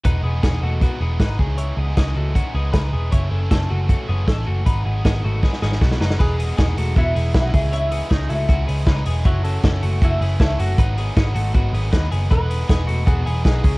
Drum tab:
CC |----------------|----------------|----------------|----------------|
HH |x---x---x---x---|x---x---x---x---|x---x---x---x---|x---x-----------|
SD |----o-------o---|----o-------o---|----o-------o---|----o---oooooooo|
BD |o---o---o---o-o-|----o---o---o---|o---o---o---o---|o---o---o---o---|

CC |x---------------|----------------|----------------|----------------|
HH |--o-x-o-x-o-x-o-|x-o-x-o-x-o-x-o-|x-o-x-o-x-o-x-o-|x-o-x-o-x-o-x-o-|
SD |----o-------o---|----o-------o---|----o-------o---|----o-------o---|
BD |o---o---o---o-o-|----o---o---o---|o---o---o---o---|o---o---o---o---|

CC |----------------|
HH |x-o-x-o-x-o-x-o-|
SD |----o-------o---|
BD |o---o---o---o-o-|